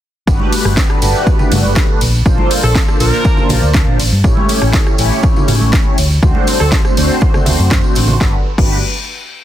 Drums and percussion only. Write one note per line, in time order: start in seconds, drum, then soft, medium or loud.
0.27 kick loud
0.27 ride medium
0.27 tambourine medium
0.40 high conga medium
0.52 open hi-hat loud
0.52 ride medium
0.52 tambourine loud
0.65 cross-stick medium
0.65 tambourine soft
0.77 kick loud
0.77 snare loud
0.77 ride medium
0.77 tambourine medium
0.89 cross-stick medium
0.89 tambourine soft
1.02 open hi-hat loud
1.02 ride medium
1.02 tambourine loud
1.15 tambourine soft
1.27 kick loud
1.27 ride medium
1.27 tambourine medium
1.39 tambourine soft
1.39 low conga medium
1.52 open hi-hat loud
1.52 ride medium
1.52 tambourine loud
1.52 low conga loud
1.64 tambourine soft
1.64 high conga medium
1.76 kick loud
1.76 snare loud
1.76 ride medium
2.01 open hi-hat medium
2.01 ride medium
2.01 tambourine medium
2.14 tambourine soft
2.26 kick loud
2.26 ride medium
2.26 tambourine medium
2.38 high conga medium
2.51 open hi-hat loud
2.51 ride medium
2.51 tambourine medium
2.63 cross-stick medium
2.63 tambourine soft
2.75 kick loud
2.75 snare loud
2.75 ride medium
2.75 tambourine soft
2.88 cross-stick medium
2.88 tambourine soft
3.00 open hi-hat medium
3.00 ride medium
3.00 tambourine medium
3.13 tambourine soft
3.24 kick loud
3.24 ride medium
3.24 tambourine medium
3.37 tambourine soft
3.37 low conga medium
3.49 open hi-hat loud
3.49 ride medium
3.49 tambourine medium
3.49 low conga loud
3.63 tambourine soft
3.74 kick loud
3.74 snare loud
3.74 ride medium
3.74 tambourine medium
3.99 open hi-hat loud
3.99 ride medium
3.99 tambourine loud
4.12 tambourine soft
4.24 kick loud
4.24 ride medium
4.24 tambourine medium
4.37 high conga loud
4.49 open hi-hat loud
4.49 ride medium
4.49 tambourine loud
4.62 cross-stick medium
4.62 tambourine soft
4.73 kick loud
4.73 snare loud
4.73 ride medium
4.73 tambourine soft
4.86 cross-stick medium
4.86 tambourine soft
4.98 open hi-hat loud
4.98 ride medium
4.98 tambourine loud
5.12 tambourine soft
5.23 kick loud
5.23 ride medium
5.23 tambourine medium
5.36 tambourine soft
5.36 low conga medium
5.48 open hi-hat loud
5.48 ride medium
5.48 tambourine medium
5.48 low conga loud
5.61 tambourine soft
5.61 high conga medium
5.73 kick loud
5.73 snare loud
5.73 ride medium
5.73 tambourine medium
5.98 open hi-hat loud
5.98 ride medium
5.98 tambourine loud
6.10 tambourine soft
6.23 kick loud
6.23 ride medium
6.23 tambourine soft
6.35 high conga medium
6.47 open hi-hat loud
6.47 ride medium
6.47 tambourine medium
6.60 cross-stick medium
6.60 tambourine soft
6.72 kick loud
6.72 snare loud
6.72 ride medium
6.72 tambourine soft
6.85 cross-stick medium
6.85 tambourine soft
6.97 open hi-hat medium
6.97 ride medium
6.97 tambourine loud
7.09 tambourine soft
7.21 kick loud
7.21 ride medium
7.21 tambourine soft
7.34 cross-stick medium
7.34 tambourine soft
7.34 low conga medium
7.46 open hi-hat loud
7.46 ride medium
7.46 tambourine medium
7.46 low conga medium
7.59 tambourine soft
7.71 kick loud
7.71 snare loud
7.71 ride medium
7.71 tambourine soft
7.84 tambourine soft
7.95 open hi-hat loud
7.95 ride medium
7.95 tambourine medium
8.08 tambourine soft
8.08 low conga medium
8.21 kick loud
8.21 snare medium
8.58 kick loud
8.58 crash medium